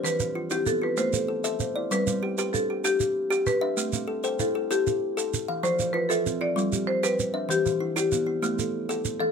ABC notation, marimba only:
X:1
M:12/8
L:1/8
Q:3/8=129
K:Gmix
V:1 name="Marimba"
B3 G A B c4- c z | B4 A2 G4 B2- | B4 A2 G4- G z | c2 B A2 d3 c B3 |
G2 z G3 z4 z A |]